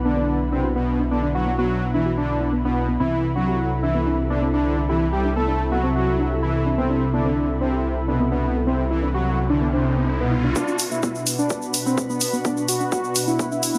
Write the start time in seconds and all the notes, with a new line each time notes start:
Already playing: B1 B3 D4 E4 B4 F#5 B5
0.05 D3 B3 D4
0.17 B3
0.52 C3 C4 D4
0.64 F#4
0.76 B2 B3
0.99 D4
1.11 D3 B3 D4
1.23 D4
1.35 F#3 F#4
1.47 B3
1.58 F#3 B3 F#4
1.94 E3 D4 E4
2.06 F#4
2.17 D3 D4
2.41 D4
2.53 B3
2.65 B2 B3 D4
2.88 B3
3.00 C2 C3 E3 C4 E4 A4
3.27 E5
3.35 F#3 D4 F#4
3.47 G4
3.83 E3 D4 E4
3.95 B3
4.06 D4
4.30 D3 B3 D4
4.42 C4
4.54 D3 D4
4.77 D4
4.89 E3 E4 G4
5.13 G3 G4
5.24 D4
5.36 A3 B3 A4
5.48 D4
5.72 F#3 B3 F#4
5.83 C4
5.95 F#3 F#4
6.19 D4
6.31 G4
6.42 E3 E4
6.66 D4
6.78 C3 B3 C4, riser
6.90 D4
7.13 D3 B3 D4
7.25 C4
7.61 C3 C4 D4
7.72 G4
8.08 B2 B3 D4
8.20 B3
8.32 B2 B3 D4
8.55 B3
8.67 C3 C4
8.91 E3 E4
9.02 D4
9.14 F#3 F#4 G4
9.50 D3 D4
9.61 B3
9.73 C3 C4 D4
9.97 B3
10.09 C4
10.20 B2 B3
10.44 D4
10.56 B2 B3 D4 F#4 B4, kick, shaker
10.62 F#5
10.68 D4, shaker
10.79 open hi-hat, shaker
10.91 B3 E4 B5, shaker
11.03 B3, kick, shaker
11.15 shaker
11.27 open hi-hat, shaker
11.38 D4, shaker
11.49 F#4, kick, shaker
11.62 shaker
11.74 open hi-hat, shaker
11.86 C4 D4, shaker
11.98 B3, kick, shaker
12.09 B3 D4, shaker
12.20 open hi-hat, shaker
12.33 B3, shaker
12.45 B3 D4, kick, shaker
12.57 shaker
12.68 F#4, open hi-hat, shaker
12.80 D4, shaker
12.92 F#4, kick, shaker
13.04 shaker
13.15 open hi-hat, shaker
13.27 D4 E4, shaker
13.39 B3, kick, shaker
13.51 D4 E4, shaker
13.63 open hi-hat, shaker
13.74 B3, shaker